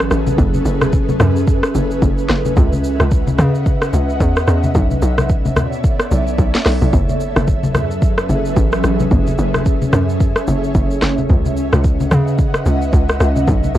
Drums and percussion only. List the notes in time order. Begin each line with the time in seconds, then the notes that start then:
0.00 cross-stick, shaker
0.11 cross-stick, shaker
0.27 high conga, shaker
0.39 kick, low conga, shaker
0.54 high conga, shaker
0.66 shaker
0.82 cross-stick, high conga, shaker
0.93 kick, shaker
1.09 high conga, shaker
1.20 cross-stick, high conga, low conga, shaker
1.36 shaker
1.48 kick, shaker
1.63 cross-stick, shaker
1.75 high conga, shaker
1.91 shaker
2.02 kick, shaker
2.18 shaker
2.29 cross-stick, snare, shaker
2.45 high conga, shaker
2.57 kick, low conga, shaker
2.73 high conga, shaker
2.84 shaker
3.00 cross-stick, high conga, shaker
3.11 kick, shaker
3.27 high conga, shaker
3.38 cross-stick, high conga, low conga, shaker
3.55 shaker
3.66 kick, shaker
3.81 cross-stick, shaker
3.93 high conga, shaker
4.09 shaker
4.20 kick, shaker
4.36 cross-stick, shaker
4.48 cross-stick, shaker
4.63 high conga, shaker
4.75 kick, low conga, shaker
4.91 high conga, shaker
5.02 shaker
5.18 cross-stick, high conga, shaker
5.29 kick, shaker
5.45 high conga, shaker
5.56 cross-stick, high conga, low conga, shaker
5.73 shaker
5.84 kick, shaker
5.99 cross-stick, shaker
6.11 high conga, shaker
6.27 shaker
6.38 kick, shaker
6.54 snare, shaker
6.66 cross-stick, snare, open hi-hat, shaker
6.82 high conga, shaker
6.93 kick, low conga, shaker
7.09 high conga, shaker
7.20 shaker
7.36 cross-stick, high conga, shaker
7.48 kick, shaker
7.63 high conga, shaker
7.75 cross-stick, high conga, low conga, shaker
7.91 shaker
8.02 kick, shaker
8.18 cross-stick, shaker
8.29 high conga, shaker
8.46 shaker
8.57 kick, shaker
8.73 cross-stick, shaker
8.84 cross-stick, shaker
9.00 high conga, shaker
9.11 kick, low conga, shaker
9.27 high conga, shaker
9.39 shaker
9.54 cross-stick, high conga, shaker
9.66 kick, shaker
9.82 high conga, shaker
9.93 cross-stick, high conga, low conga, shaker
10.09 shaker
10.20 kick, shaker
10.36 cross-stick, shaker
10.47 high conga, shaker
10.64 shaker
10.75 kick, shaker
10.91 shaker
11.02 cross-stick, snare, shaker
11.18 high conga, shaker
11.29 kick, low conga, shaker
11.45 high conga, shaker
11.57 shaker
11.73 cross-stick, high conga, shaker
11.84 kick, shaker
12.00 high conga, shaker
12.11 cross-stick, high conga, low conga, shaker
12.27 shaker
12.39 kick, shaker
12.54 cross-stick, shaker
12.66 high conga, shaker
12.82 shaker
12.93 kick, shaker
13.09 cross-stick, shaker
13.20 cross-stick, shaker
13.36 high conga, shaker
13.48 kick, low conga, shaker
13.64 high conga, shaker
13.75 shaker